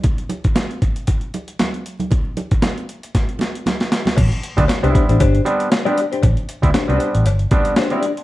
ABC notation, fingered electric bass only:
X:1
M:4/4
L:1/16
Q:"Swing 16ths" 1/4=116
K:Am
V:1 name="Fingered electric bass" clef=bass
z16 | z16 | A,,, z2 D,, z C,, z A,,, G,,,2 z6 | A,,, z2 D,, z C,, z A,,, G,,,2 z6 |]